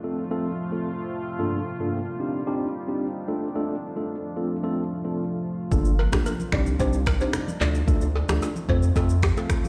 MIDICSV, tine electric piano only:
0, 0, Header, 1, 2, 480
1, 0, Start_track
1, 0, Tempo, 540541
1, 1235, Time_signature, 4, 2, 24, 8
1, 8601, End_track
2, 0, Start_track
2, 0, Title_t, "Tine electric piano"
2, 0, Program_c, 0, 4
2, 32, Note_on_c, 0, 57, 78
2, 33, Note_on_c, 0, 60, 76
2, 35, Note_on_c, 0, 65, 73
2, 36, Note_on_c, 0, 69, 87
2, 202, Note_off_c, 0, 57, 0
2, 202, Note_off_c, 0, 60, 0
2, 203, Note_off_c, 0, 65, 0
2, 204, Note_off_c, 0, 69, 0
2, 271, Note_on_c, 0, 57, 96
2, 273, Note_on_c, 0, 60, 90
2, 275, Note_on_c, 0, 65, 91
2, 277, Note_on_c, 0, 69, 107
2, 442, Note_off_c, 0, 57, 0
2, 442, Note_off_c, 0, 60, 0
2, 443, Note_off_c, 0, 65, 0
2, 444, Note_off_c, 0, 69, 0
2, 636, Note_on_c, 0, 57, 76
2, 638, Note_on_c, 0, 60, 70
2, 640, Note_on_c, 0, 65, 70
2, 642, Note_on_c, 0, 69, 82
2, 801, Note_off_c, 0, 57, 0
2, 801, Note_off_c, 0, 60, 0
2, 802, Note_off_c, 0, 65, 0
2, 803, Note_off_c, 0, 69, 0
2, 1231, Note_on_c, 0, 43, 91
2, 1233, Note_on_c, 0, 58, 87
2, 1234, Note_on_c, 0, 62, 86
2, 1235, Note_on_c, 0, 65, 86
2, 1237, Note_on_c, 0, 69, 102
2, 1401, Note_off_c, 0, 43, 0
2, 1402, Note_off_c, 0, 58, 0
2, 1403, Note_off_c, 0, 62, 0
2, 1404, Note_off_c, 0, 65, 0
2, 1404, Note_off_c, 0, 69, 0
2, 1596, Note_on_c, 0, 43, 79
2, 1598, Note_on_c, 0, 58, 74
2, 1599, Note_on_c, 0, 62, 72
2, 1600, Note_on_c, 0, 65, 75
2, 1602, Note_on_c, 0, 69, 85
2, 1760, Note_off_c, 0, 43, 0
2, 1761, Note_off_c, 0, 58, 0
2, 1762, Note_off_c, 0, 62, 0
2, 1762, Note_off_c, 0, 65, 0
2, 1763, Note_off_c, 0, 69, 0
2, 1951, Note_on_c, 0, 60, 77
2, 1953, Note_on_c, 0, 62, 75
2, 1955, Note_on_c, 0, 63, 74
2, 1957, Note_on_c, 0, 67, 89
2, 2122, Note_off_c, 0, 60, 0
2, 2122, Note_off_c, 0, 62, 0
2, 2123, Note_off_c, 0, 63, 0
2, 2124, Note_off_c, 0, 67, 0
2, 2191, Note_on_c, 0, 60, 98
2, 2192, Note_on_c, 0, 62, 90
2, 2194, Note_on_c, 0, 63, 89
2, 2195, Note_on_c, 0, 67, 106
2, 2361, Note_off_c, 0, 60, 0
2, 2362, Note_off_c, 0, 62, 0
2, 2363, Note_off_c, 0, 63, 0
2, 2364, Note_off_c, 0, 67, 0
2, 2556, Note_on_c, 0, 60, 76
2, 2558, Note_on_c, 0, 62, 70
2, 2560, Note_on_c, 0, 63, 68
2, 2562, Note_on_c, 0, 67, 81
2, 2721, Note_off_c, 0, 60, 0
2, 2721, Note_off_c, 0, 62, 0
2, 2722, Note_off_c, 0, 63, 0
2, 2723, Note_off_c, 0, 67, 0
2, 2911, Note_on_c, 0, 57, 81
2, 2913, Note_on_c, 0, 62, 71
2, 2915, Note_on_c, 0, 65, 67
2, 2917, Note_on_c, 0, 69, 85
2, 3081, Note_off_c, 0, 57, 0
2, 3082, Note_off_c, 0, 62, 0
2, 3083, Note_off_c, 0, 65, 0
2, 3084, Note_off_c, 0, 69, 0
2, 3153, Note_on_c, 0, 57, 97
2, 3154, Note_on_c, 0, 62, 88
2, 3156, Note_on_c, 0, 65, 86
2, 3157, Note_on_c, 0, 69, 100
2, 3322, Note_off_c, 0, 57, 0
2, 3323, Note_off_c, 0, 62, 0
2, 3324, Note_off_c, 0, 65, 0
2, 3325, Note_off_c, 0, 69, 0
2, 3517, Note_on_c, 0, 57, 77
2, 3519, Note_on_c, 0, 62, 75
2, 3521, Note_on_c, 0, 65, 71
2, 3522, Note_on_c, 0, 69, 87
2, 3681, Note_off_c, 0, 57, 0
2, 3682, Note_off_c, 0, 62, 0
2, 3683, Note_off_c, 0, 65, 0
2, 3684, Note_off_c, 0, 69, 0
2, 3874, Note_on_c, 0, 57, 78
2, 3876, Note_on_c, 0, 60, 74
2, 3877, Note_on_c, 0, 65, 74
2, 3879, Note_on_c, 0, 69, 89
2, 4043, Note_off_c, 0, 57, 0
2, 4044, Note_off_c, 0, 60, 0
2, 4045, Note_off_c, 0, 65, 0
2, 4046, Note_off_c, 0, 69, 0
2, 4113, Note_on_c, 0, 57, 98
2, 4115, Note_on_c, 0, 60, 92
2, 4116, Note_on_c, 0, 65, 86
2, 4118, Note_on_c, 0, 69, 109
2, 4282, Note_off_c, 0, 57, 0
2, 4283, Note_off_c, 0, 60, 0
2, 4284, Note_off_c, 0, 65, 0
2, 4285, Note_off_c, 0, 69, 0
2, 4478, Note_on_c, 0, 57, 74
2, 4480, Note_on_c, 0, 60, 68
2, 4482, Note_on_c, 0, 65, 68
2, 4484, Note_on_c, 0, 69, 80
2, 4641, Note_off_c, 0, 57, 0
2, 4642, Note_off_c, 0, 60, 0
2, 4643, Note_off_c, 0, 65, 0
2, 4645, Note_off_c, 0, 69, 0
2, 5073, Note_on_c, 0, 58, 97
2, 5075, Note_on_c, 0, 62, 83
2, 5077, Note_on_c, 0, 65, 83
2, 5079, Note_on_c, 0, 69, 101
2, 5242, Note_off_c, 0, 58, 0
2, 5244, Note_off_c, 0, 62, 0
2, 5245, Note_off_c, 0, 65, 0
2, 5246, Note_off_c, 0, 69, 0
2, 5438, Note_on_c, 0, 58, 82
2, 5440, Note_on_c, 0, 62, 68
2, 5441, Note_on_c, 0, 65, 74
2, 5443, Note_on_c, 0, 69, 84
2, 5601, Note_off_c, 0, 58, 0
2, 5602, Note_off_c, 0, 62, 0
2, 5603, Note_off_c, 0, 65, 0
2, 5604, Note_off_c, 0, 69, 0
2, 5793, Note_on_c, 0, 60, 80
2, 5794, Note_on_c, 0, 62, 75
2, 5796, Note_on_c, 0, 63, 75
2, 5798, Note_on_c, 0, 67, 91
2, 5962, Note_off_c, 0, 60, 0
2, 5963, Note_off_c, 0, 62, 0
2, 5964, Note_off_c, 0, 63, 0
2, 5965, Note_off_c, 0, 67, 0
2, 6032, Note_on_c, 0, 60, 98
2, 6034, Note_on_c, 0, 62, 88
2, 6036, Note_on_c, 0, 63, 86
2, 6038, Note_on_c, 0, 67, 108
2, 6202, Note_off_c, 0, 60, 0
2, 6203, Note_off_c, 0, 62, 0
2, 6204, Note_off_c, 0, 63, 0
2, 6205, Note_off_c, 0, 67, 0
2, 6396, Note_on_c, 0, 60, 76
2, 6398, Note_on_c, 0, 62, 66
2, 6400, Note_on_c, 0, 63, 72
2, 6402, Note_on_c, 0, 67, 79
2, 6560, Note_off_c, 0, 60, 0
2, 6561, Note_off_c, 0, 62, 0
2, 6562, Note_off_c, 0, 63, 0
2, 6563, Note_off_c, 0, 67, 0
2, 6753, Note_on_c, 0, 57, 79
2, 6755, Note_on_c, 0, 62, 70
2, 6757, Note_on_c, 0, 65, 70
2, 6759, Note_on_c, 0, 69, 85
2, 6923, Note_off_c, 0, 57, 0
2, 6923, Note_off_c, 0, 62, 0
2, 6924, Note_off_c, 0, 65, 0
2, 6925, Note_off_c, 0, 69, 0
2, 6992, Note_on_c, 0, 57, 90
2, 6994, Note_on_c, 0, 62, 84
2, 6996, Note_on_c, 0, 65, 83
2, 6998, Note_on_c, 0, 69, 104
2, 7162, Note_off_c, 0, 57, 0
2, 7163, Note_off_c, 0, 62, 0
2, 7164, Note_off_c, 0, 65, 0
2, 7165, Note_off_c, 0, 69, 0
2, 7358, Note_on_c, 0, 57, 82
2, 7360, Note_on_c, 0, 62, 72
2, 7361, Note_on_c, 0, 65, 74
2, 7364, Note_on_c, 0, 69, 84
2, 7521, Note_off_c, 0, 57, 0
2, 7522, Note_off_c, 0, 62, 0
2, 7523, Note_off_c, 0, 65, 0
2, 7524, Note_off_c, 0, 69, 0
2, 7714, Note_on_c, 0, 57, 81
2, 7716, Note_on_c, 0, 60, 71
2, 7717, Note_on_c, 0, 65, 77
2, 7719, Note_on_c, 0, 69, 93
2, 7883, Note_off_c, 0, 57, 0
2, 7884, Note_off_c, 0, 60, 0
2, 7885, Note_off_c, 0, 65, 0
2, 7885, Note_off_c, 0, 69, 0
2, 7953, Note_on_c, 0, 57, 102
2, 7955, Note_on_c, 0, 60, 89
2, 7957, Note_on_c, 0, 65, 85
2, 7959, Note_on_c, 0, 69, 108
2, 8122, Note_off_c, 0, 57, 0
2, 8124, Note_off_c, 0, 60, 0
2, 8124, Note_off_c, 0, 65, 0
2, 8125, Note_off_c, 0, 69, 0
2, 8318, Note_on_c, 0, 57, 76
2, 8320, Note_on_c, 0, 60, 70
2, 8322, Note_on_c, 0, 65, 69
2, 8323, Note_on_c, 0, 69, 84
2, 8481, Note_off_c, 0, 57, 0
2, 8482, Note_off_c, 0, 60, 0
2, 8483, Note_off_c, 0, 65, 0
2, 8484, Note_off_c, 0, 69, 0
2, 8601, End_track
0, 0, End_of_file